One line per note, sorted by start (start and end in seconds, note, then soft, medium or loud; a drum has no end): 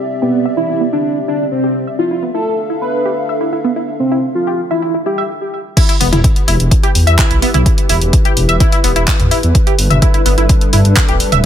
0.00 1.95 C4 medium
0.00 1.95 G4 medium
0.00 1.95 D5 medium
0.00 1.95 E5 medium
0.22 0.48 B3 medium
0.22 0.29 G4 medium
0.45 0.53 E5 medium
0.57 0.83 E4 medium
0.57 0.68 E4 medium
0.69 0.77 E4 medium
0.81 0.88 B3 medium
0.93 1.18 D4 medium
0.93 1.00 E4 medium
1.28 1.45 D4 medium
1.28 1.36 E4 medium
1.51 1.86 C4 loud
1.64 1.71 G4 medium
1.87 1.95 E5 medium
1.99 5.26 D4 medium
1.99 2.10 E4 medium
1.99 2.25 F4 medium
1.99 5.26 A4 medium
1.99 5.26 E5 medium
1.99 5.26 F5 medium
2.11 2.18 E4 medium
2.23 2.30 B3 medium
2.34 2.42 E4 medium
2.34 2.68 A4 loud
2.70 2.77 E4 medium
2.81 3.16 B4 medium
3.05 3.13 G4 medium
3.29 3.36 E5 medium
3.41 3.51 E4 medium
3.53 3.60 E4 medium
3.64 3.72 B3 medium
3.76 3.84 E4 medium
4.00 4.25 C4 medium
4.11 4.19 E4 medium
4.35 4.61 F4 medium
4.47 4.54 G4 medium
4.71 4.96 E4 medium
4.71 4.78 E5 medium
4.82 4.93 E4 medium
4.94 5.02 E4 medium
5.06 5.17 E4 medium
5.06 5.23 G4 medium
5.18 5.29 E5 loud
5.77 5.88 E4 medium
5.77 9.51 E4 medium
5.77 9.51 G4 medium
5.77 11.46 B4 medium
5.77 kick loud
5.77 closed hi-hat medium
5.77 crash loud
5.89 5.96 E4 medium
5.89 closed hi-hat soft
6.00 6.10 E1 medium
6.00 6.08 B3 medium
6.00 open hi-hat loud
6.12 6.22 E1 medium
6.12 6.20 E4 medium
6.12 closed hi-hat soft
6.12 mid tom medium
6.24 kick loud
6.24 closed hi-hat medium
6.36 closed hi-hat soft
6.48 6.57 E1 medium
6.48 6.55 E4 medium
6.48 open hi-hat loud
6.60 6.69 E1 medium
6.60 closed hi-hat soft
6.71 kick loud
6.71 closed hi-hat medium
6.83 6.91 G4 medium
6.83 closed hi-hat soft
6.95 7.05 E2 medium
6.95 open hi-hat loud
7.07 7.16 E2 medium
7.07 7.14 E5 medium
7.07 closed hi-hat soft
7.19 7.29 E4 medium
7.19 kick loud
7.19 clap loud
7.19 closed hi-hat medium
7.31 7.40 B1 medium
7.31 7.38 E4 medium
7.31 closed hi-hat soft
7.42 7.50 B3 medium
7.42 open hi-hat medium
7.54 7.64 B1 medium
7.54 7.62 E4 medium
7.54 closed hi-hat soft
7.54 mid tom medium
7.66 kick loud
7.66 closed hi-hat medium
7.78 closed hi-hat soft
7.89 7.99 E1 medium
7.89 7.97 E4 medium
7.89 open hi-hat loud
8.01 8.11 E1 medium
8.01 closed hi-hat soft
8.13 kick loud
8.13 closed hi-hat medium
8.25 8.32 G4 medium
8.25 closed hi-hat soft
8.37 8.46 E1 medium
8.37 open hi-hat medium
8.49 8.58 E1 medium
8.49 8.56 E5 medium
8.49 closed hi-hat soft
8.60 8.71 E4 medium
8.60 kick loud
8.60 closed hi-hat medium
8.72 8.80 E4 medium
8.72 closed hi-hat soft
8.84 8.94 E1 loud
8.84 8.92 B3 medium
8.84 open hi-hat loud
8.96 9.05 E1 medium
8.96 9.03 E4 medium
8.96 closed hi-hat soft
9.08 kick loud
9.08 clap loud
9.08 closed hi-hat medium
9.20 9.29 E2 medium
9.20 closed hi-hat soft
9.20 mid tom medium
9.31 9.39 E4 medium
9.31 open hi-hat loud
9.43 9.53 E2 medium
9.43 closed hi-hat soft
9.55 11.46 G3 medium
9.55 11.46 D4 medium
9.55 11.46 A4 medium
9.55 kick loud
9.55 closed hi-hat medium
9.67 9.74 G4 medium
9.67 closed hi-hat soft
9.79 9.88 G1 medium
9.79 open hi-hat loud
9.90 10.00 G1 medium
9.90 9.98 E5 medium
9.90 closed hi-hat soft
9.90 mid tom medium
10.02 10.13 E4 medium
10.02 kick loud
10.02 closed hi-hat medium
10.14 10.21 E4 medium
10.14 closed hi-hat soft
10.26 10.35 G1 loud
10.26 10.33 B3 medium
10.26 open hi-hat loud
10.38 10.47 G1 medium
10.38 10.45 E4 medium
10.38 closed hi-hat soft
10.49 kick loud
10.49 closed hi-hat medium
10.61 closed hi-hat soft
10.73 10.83 G2 loud
10.73 10.81 E4 medium
10.73 open hi-hat loud
10.85 10.94 G2 medium
10.85 closed hi-hat soft
10.97 kick loud
10.97 clap loud
10.97 closed hi-hat medium
11.08 11.18 D1 medium
11.08 11.16 G4 medium
11.08 closed hi-hat soft
11.20 open hi-hat loud
11.32 11.41 D1 medium
11.32 11.40 E5 medium
11.32 closed hi-hat soft
11.32 mid tom medium